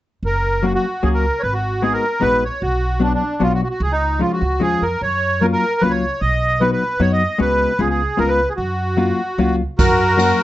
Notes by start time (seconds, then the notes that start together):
0.23 F#1 A#4
0.63 F#3 A#3 C#4 F#4
0.74 F#4
1.03 C#2 F#3 A#3 C#4 F#4 G#4
1.14 A#4
1.40 G#1 B4 C#5
1.53 F#4
1.82 G#3 B3 D#4 F#4 G#4
1.93 A#4
2.21 A#1 G#3 B3 D#4 F#4 B4
2.45 C#5
2.62 B1 F#4
3.00 F#3 B3 D4 F#4
3.14 D4
3.40 B1 F#3 B3 D4 F4 F#4
3.54 F#4
3.63 F#4
3.70 F#4
3.80 C#2 G#4
3.92 D#4
4.19 F3 G#3 C#4 F4
4.32 F#4
4.41 C#2
4.60 D#2 F3 G#3 C#4 F4 G#4
4.82 F2 A#4
5.01 F#2 C#5
5.41 F#3 A#3 C#4 F4 A#4
5.53 A#4
5.80 C#2 F#3 A#3 C#4 F4 B4
5.90 C#5
6.21 B1 D#5
6.61 F#3 B3 D#4 F#4 B4
6.72 B4
7.00 F#2 F#3 B3 D#4 F#4 C#5
7.12 D#5
7.38 C#2 G#3 B3 C#4 F#4 B4
7.79 C#2 G#3 B3 C#4 F4 G#4
7.90 G#4
8.17 C#2 G#3 B3 C#4 F4 A#4
8.28 B4
8.49 G#4
8.56 F#2 F#4
8.97 F#3 A#3 C#4 F4
9.38 C#2 F#3 A#3 C#4 F4
9.78 F#2 F#4 A#4, kick, ride
10.17 F#3 A#3 C#4 F#4, ride